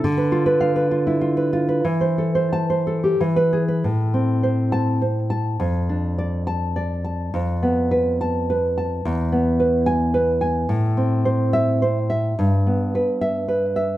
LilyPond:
\new Staff \with { instrumentName = "Nylon-string guitar" } { \time 3/4 \key a \minor \tempo 4 = 104 << { r4 f''8 r4. | r4 a''8 r8. b'8 r16 | r4. a''8. r8. | r4. a''8. r8. |
r4. a''8. r8. | r4. gis''8. r8. | r4. e''8. r8. | r4. e''8. r8. | } \\ { d16 b'16 f'16 b'8 b'16 f'16 e'16 f'16 b'16 f'16 b'16 | e16 c''16 a'16 c''8 c''16 a'16 g'16 e8 gis'16 b'16 | a,8 c'8 c''4 c''8 a''8 | f,8 d'8 d''4 d''8 a''8 |
f,8 b8 b'4 b'8 a''8 | e,8 b8 b'4 b'8 gis''8 | a,8 c'8 c''4 c''8 e''8 | g,8 b8 b'4 b'8 e''8 | } >> }